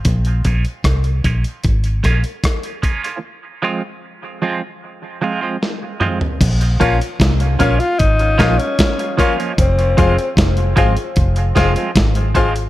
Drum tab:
CC |----------------|----------------|x---------------|----------------|
HH |xxxxxxxxxxxxxxxx|----------------|xxxxxxxxxxxxxxxx|xxxxxxxxxxxxxxxx|
SD |----r-----r-r---|------------o---|----o-----o-o---|----o-----o-o---|
T2 |----------------|--------------o-|----------------|----------------|
FT |----------------|---------------o|----------------|----------------|
BD |o-o-o-o-o-o-o-o-|----------------|o-o-o-o-o-o-o-o-|o-o-o-o-o-o-o-o-|